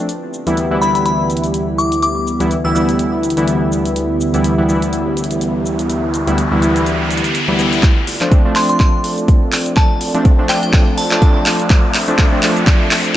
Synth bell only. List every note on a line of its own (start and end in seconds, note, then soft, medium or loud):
0.82 0.90 B5 medium
0.95 1.02 B5 medium
1.06 1.28 B5 medium
1.78 2.00 D6 medium
2.03 2.25 D6 medium
2.65 2.71 E6 medium
2.75 2.84 E6 medium
8.56 8.65 C6 medium
8.69 8.76 C6 medium
8.80 9.02 C6 medium
9.77 9.99 A5 medium
10.49 10.58 G5 medium
10.63 10.70 G5 medium
10.98 11.46 A5 medium